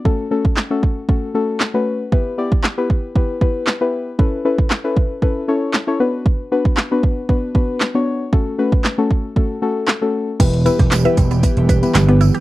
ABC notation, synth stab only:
X:1
M:4/4
L:1/16
Q:1/4=116
K:Edor
V:1 name="Synth stab"
[A,CFA] z [A,CFA]2 z [A,CFA]2 z [A,CFA] z [A,CFA]2 z [A,CFB]2 z | [B,EGB] z [B,EGd]2 z [B,EGB]2 z [B,EGB] z [B,EGB]2 z [B,EGB]2 z | [CEAB] z [CEAB]2 z [CEAB]2 z [CEAB] z [CEAc]2 z [CEAc] [B,DFB]2- | [B,DFB] z [B,DFB]2 z [B,DFB]2 z [B,DFB] z [B,DFB]2 z [B,DFc]2 z |
[A,CFA] z [A,CFB]2 z [A,CFA]2 z [A,CFA] z [A,CFA]2 z [A,CFA]2 z | [B,EGB] z [B,EGB]2 z [B,EGB]2 z [B,EGB]2 z [B,EGB] z [B,EGB]2 z |]